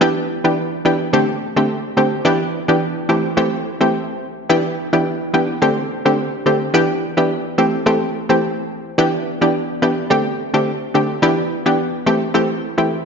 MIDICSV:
0, 0, Header, 1, 2, 480
1, 0, Start_track
1, 0, Key_signature, 1, "minor"
1, 0, Tempo, 560748
1, 9, Time_signature, 4, 2, 24, 8
1, 11171, End_track
2, 0, Start_track
2, 0, Title_t, "Synth pluck"
2, 0, Program_c, 0, 84
2, 7, Note_on_c, 0, 52, 98
2, 9, Note_on_c, 0, 59, 89
2, 10, Note_on_c, 0, 62, 86
2, 12, Note_on_c, 0, 67, 109
2, 195, Note_off_c, 0, 52, 0
2, 195, Note_off_c, 0, 59, 0
2, 196, Note_off_c, 0, 62, 0
2, 197, Note_off_c, 0, 67, 0
2, 379, Note_on_c, 0, 52, 75
2, 380, Note_on_c, 0, 59, 68
2, 382, Note_on_c, 0, 62, 71
2, 384, Note_on_c, 0, 67, 81
2, 554, Note_off_c, 0, 52, 0
2, 555, Note_off_c, 0, 59, 0
2, 556, Note_off_c, 0, 62, 0
2, 557, Note_off_c, 0, 67, 0
2, 727, Note_on_c, 0, 52, 77
2, 730, Note_on_c, 0, 59, 73
2, 732, Note_on_c, 0, 62, 72
2, 732, Note_on_c, 0, 67, 89
2, 914, Note_off_c, 0, 52, 0
2, 916, Note_off_c, 0, 59, 0
2, 917, Note_off_c, 0, 62, 0
2, 917, Note_off_c, 0, 67, 0
2, 967, Note_on_c, 0, 50, 89
2, 970, Note_on_c, 0, 57, 85
2, 971, Note_on_c, 0, 60, 85
2, 972, Note_on_c, 0, 67, 101
2, 1155, Note_off_c, 0, 50, 0
2, 1156, Note_off_c, 0, 57, 0
2, 1156, Note_off_c, 0, 60, 0
2, 1157, Note_off_c, 0, 67, 0
2, 1338, Note_on_c, 0, 50, 81
2, 1340, Note_on_c, 0, 57, 73
2, 1341, Note_on_c, 0, 60, 71
2, 1344, Note_on_c, 0, 67, 85
2, 1662, Note_off_c, 0, 50, 0
2, 1663, Note_off_c, 0, 57, 0
2, 1664, Note_off_c, 0, 60, 0
2, 1665, Note_off_c, 0, 67, 0
2, 1685, Note_on_c, 0, 50, 76
2, 1686, Note_on_c, 0, 57, 73
2, 1688, Note_on_c, 0, 60, 73
2, 1690, Note_on_c, 0, 67, 86
2, 1910, Note_off_c, 0, 50, 0
2, 1911, Note_off_c, 0, 57, 0
2, 1912, Note_off_c, 0, 60, 0
2, 1913, Note_off_c, 0, 67, 0
2, 1924, Note_on_c, 0, 52, 98
2, 1926, Note_on_c, 0, 59, 89
2, 1928, Note_on_c, 0, 62, 93
2, 1930, Note_on_c, 0, 67, 108
2, 2113, Note_off_c, 0, 52, 0
2, 2114, Note_off_c, 0, 59, 0
2, 2115, Note_off_c, 0, 62, 0
2, 2116, Note_off_c, 0, 67, 0
2, 2297, Note_on_c, 0, 52, 77
2, 2298, Note_on_c, 0, 59, 69
2, 2301, Note_on_c, 0, 62, 72
2, 2303, Note_on_c, 0, 67, 82
2, 2473, Note_off_c, 0, 52, 0
2, 2474, Note_off_c, 0, 59, 0
2, 2475, Note_off_c, 0, 62, 0
2, 2476, Note_off_c, 0, 67, 0
2, 2644, Note_on_c, 0, 52, 83
2, 2646, Note_on_c, 0, 57, 71
2, 2648, Note_on_c, 0, 60, 73
2, 2649, Note_on_c, 0, 67, 87
2, 2833, Note_off_c, 0, 52, 0
2, 2834, Note_off_c, 0, 57, 0
2, 2835, Note_off_c, 0, 60, 0
2, 2835, Note_off_c, 0, 67, 0
2, 2884, Note_on_c, 0, 52, 95
2, 2887, Note_on_c, 0, 57, 86
2, 2888, Note_on_c, 0, 60, 85
2, 2889, Note_on_c, 0, 67, 101
2, 3073, Note_off_c, 0, 52, 0
2, 3074, Note_off_c, 0, 57, 0
2, 3075, Note_off_c, 0, 60, 0
2, 3076, Note_off_c, 0, 67, 0
2, 3258, Note_on_c, 0, 52, 81
2, 3259, Note_on_c, 0, 57, 75
2, 3261, Note_on_c, 0, 60, 78
2, 3263, Note_on_c, 0, 67, 88
2, 3434, Note_off_c, 0, 52, 0
2, 3434, Note_off_c, 0, 57, 0
2, 3435, Note_off_c, 0, 60, 0
2, 3436, Note_off_c, 0, 67, 0
2, 3848, Note_on_c, 0, 52, 96
2, 3849, Note_on_c, 0, 59, 89
2, 3851, Note_on_c, 0, 62, 89
2, 3852, Note_on_c, 0, 67, 109
2, 4035, Note_off_c, 0, 52, 0
2, 4035, Note_off_c, 0, 59, 0
2, 4036, Note_off_c, 0, 62, 0
2, 4037, Note_off_c, 0, 67, 0
2, 4219, Note_on_c, 0, 52, 81
2, 4220, Note_on_c, 0, 59, 72
2, 4222, Note_on_c, 0, 62, 70
2, 4223, Note_on_c, 0, 67, 83
2, 4394, Note_off_c, 0, 52, 0
2, 4395, Note_off_c, 0, 59, 0
2, 4396, Note_off_c, 0, 62, 0
2, 4396, Note_off_c, 0, 67, 0
2, 4567, Note_on_c, 0, 52, 80
2, 4568, Note_on_c, 0, 59, 73
2, 4570, Note_on_c, 0, 62, 72
2, 4572, Note_on_c, 0, 67, 85
2, 4754, Note_off_c, 0, 52, 0
2, 4755, Note_off_c, 0, 59, 0
2, 4756, Note_off_c, 0, 62, 0
2, 4757, Note_off_c, 0, 67, 0
2, 4808, Note_on_c, 0, 50, 94
2, 4809, Note_on_c, 0, 57, 83
2, 4811, Note_on_c, 0, 60, 86
2, 4813, Note_on_c, 0, 67, 102
2, 4995, Note_off_c, 0, 50, 0
2, 4995, Note_off_c, 0, 57, 0
2, 4996, Note_off_c, 0, 60, 0
2, 4997, Note_off_c, 0, 67, 0
2, 5182, Note_on_c, 0, 50, 80
2, 5183, Note_on_c, 0, 57, 75
2, 5185, Note_on_c, 0, 60, 75
2, 5186, Note_on_c, 0, 67, 91
2, 5504, Note_off_c, 0, 50, 0
2, 5505, Note_off_c, 0, 57, 0
2, 5505, Note_off_c, 0, 60, 0
2, 5506, Note_off_c, 0, 67, 0
2, 5528, Note_on_c, 0, 50, 76
2, 5530, Note_on_c, 0, 57, 72
2, 5532, Note_on_c, 0, 60, 70
2, 5534, Note_on_c, 0, 67, 86
2, 5751, Note_off_c, 0, 50, 0
2, 5753, Note_off_c, 0, 57, 0
2, 5753, Note_off_c, 0, 60, 0
2, 5755, Note_off_c, 0, 67, 0
2, 5768, Note_on_c, 0, 52, 95
2, 5770, Note_on_c, 0, 59, 86
2, 5772, Note_on_c, 0, 62, 92
2, 5773, Note_on_c, 0, 67, 114
2, 5955, Note_off_c, 0, 52, 0
2, 5956, Note_off_c, 0, 59, 0
2, 5957, Note_off_c, 0, 62, 0
2, 5957, Note_off_c, 0, 67, 0
2, 6138, Note_on_c, 0, 52, 77
2, 6140, Note_on_c, 0, 59, 74
2, 6142, Note_on_c, 0, 62, 73
2, 6144, Note_on_c, 0, 67, 87
2, 6314, Note_off_c, 0, 52, 0
2, 6315, Note_off_c, 0, 59, 0
2, 6316, Note_off_c, 0, 62, 0
2, 6317, Note_off_c, 0, 67, 0
2, 6488, Note_on_c, 0, 52, 77
2, 6489, Note_on_c, 0, 57, 76
2, 6492, Note_on_c, 0, 60, 77
2, 6493, Note_on_c, 0, 67, 91
2, 6675, Note_off_c, 0, 52, 0
2, 6675, Note_off_c, 0, 57, 0
2, 6677, Note_off_c, 0, 60, 0
2, 6677, Note_off_c, 0, 67, 0
2, 6728, Note_on_c, 0, 52, 92
2, 6729, Note_on_c, 0, 57, 88
2, 6731, Note_on_c, 0, 60, 85
2, 6733, Note_on_c, 0, 67, 100
2, 6915, Note_off_c, 0, 52, 0
2, 6915, Note_off_c, 0, 57, 0
2, 6916, Note_off_c, 0, 60, 0
2, 6918, Note_off_c, 0, 67, 0
2, 7099, Note_on_c, 0, 52, 83
2, 7099, Note_on_c, 0, 57, 73
2, 7102, Note_on_c, 0, 60, 74
2, 7103, Note_on_c, 0, 67, 92
2, 7274, Note_off_c, 0, 52, 0
2, 7274, Note_off_c, 0, 57, 0
2, 7276, Note_off_c, 0, 60, 0
2, 7276, Note_off_c, 0, 67, 0
2, 7687, Note_on_c, 0, 52, 98
2, 7688, Note_on_c, 0, 59, 91
2, 7691, Note_on_c, 0, 62, 91
2, 7693, Note_on_c, 0, 67, 108
2, 7874, Note_off_c, 0, 52, 0
2, 7875, Note_off_c, 0, 59, 0
2, 7876, Note_off_c, 0, 62, 0
2, 7877, Note_off_c, 0, 67, 0
2, 8058, Note_on_c, 0, 52, 79
2, 8060, Note_on_c, 0, 59, 71
2, 8061, Note_on_c, 0, 62, 75
2, 8063, Note_on_c, 0, 67, 85
2, 8234, Note_off_c, 0, 52, 0
2, 8235, Note_off_c, 0, 59, 0
2, 8236, Note_off_c, 0, 62, 0
2, 8236, Note_off_c, 0, 67, 0
2, 8407, Note_on_c, 0, 52, 81
2, 8408, Note_on_c, 0, 59, 77
2, 8410, Note_on_c, 0, 62, 71
2, 8413, Note_on_c, 0, 67, 90
2, 8594, Note_off_c, 0, 52, 0
2, 8595, Note_off_c, 0, 59, 0
2, 8596, Note_off_c, 0, 62, 0
2, 8597, Note_off_c, 0, 67, 0
2, 8647, Note_on_c, 0, 50, 90
2, 8649, Note_on_c, 0, 57, 85
2, 8651, Note_on_c, 0, 60, 82
2, 8652, Note_on_c, 0, 67, 102
2, 8835, Note_off_c, 0, 50, 0
2, 8835, Note_off_c, 0, 57, 0
2, 8836, Note_off_c, 0, 60, 0
2, 8837, Note_off_c, 0, 67, 0
2, 9019, Note_on_c, 0, 50, 83
2, 9021, Note_on_c, 0, 57, 77
2, 9023, Note_on_c, 0, 60, 76
2, 9024, Note_on_c, 0, 67, 92
2, 9342, Note_off_c, 0, 50, 0
2, 9343, Note_off_c, 0, 57, 0
2, 9344, Note_off_c, 0, 60, 0
2, 9345, Note_off_c, 0, 67, 0
2, 9368, Note_on_c, 0, 50, 83
2, 9370, Note_on_c, 0, 57, 74
2, 9371, Note_on_c, 0, 60, 71
2, 9374, Note_on_c, 0, 67, 85
2, 9591, Note_off_c, 0, 50, 0
2, 9593, Note_off_c, 0, 57, 0
2, 9593, Note_off_c, 0, 60, 0
2, 9594, Note_off_c, 0, 67, 0
2, 9607, Note_on_c, 0, 52, 99
2, 9608, Note_on_c, 0, 59, 91
2, 9611, Note_on_c, 0, 62, 91
2, 9612, Note_on_c, 0, 67, 108
2, 9794, Note_off_c, 0, 52, 0
2, 9795, Note_off_c, 0, 59, 0
2, 9796, Note_off_c, 0, 62, 0
2, 9797, Note_off_c, 0, 67, 0
2, 9979, Note_on_c, 0, 52, 78
2, 9981, Note_on_c, 0, 59, 74
2, 9983, Note_on_c, 0, 62, 73
2, 9984, Note_on_c, 0, 67, 89
2, 10154, Note_off_c, 0, 52, 0
2, 10155, Note_off_c, 0, 59, 0
2, 10156, Note_off_c, 0, 62, 0
2, 10157, Note_off_c, 0, 67, 0
2, 10326, Note_on_c, 0, 52, 79
2, 10328, Note_on_c, 0, 57, 74
2, 10330, Note_on_c, 0, 60, 73
2, 10331, Note_on_c, 0, 67, 92
2, 10514, Note_off_c, 0, 52, 0
2, 10515, Note_off_c, 0, 57, 0
2, 10516, Note_off_c, 0, 60, 0
2, 10516, Note_off_c, 0, 67, 0
2, 10564, Note_on_c, 0, 52, 90
2, 10566, Note_on_c, 0, 57, 82
2, 10568, Note_on_c, 0, 60, 86
2, 10570, Note_on_c, 0, 67, 105
2, 10753, Note_off_c, 0, 52, 0
2, 10754, Note_off_c, 0, 57, 0
2, 10755, Note_off_c, 0, 60, 0
2, 10756, Note_off_c, 0, 67, 0
2, 10937, Note_on_c, 0, 52, 83
2, 10938, Note_on_c, 0, 57, 72
2, 10941, Note_on_c, 0, 60, 77
2, 10943, Note_on_c, 0, 67, 86
2, 11114, Note_off_c, 0, 52, 0
2, 11114, Note_off_c, 0, 57, 0
2, 11115, Note_off_c, 0, 60, 0
2, 11116, Note_off_c, 0, 67, 0
2, 11171, End_track
0, 0, End_of_file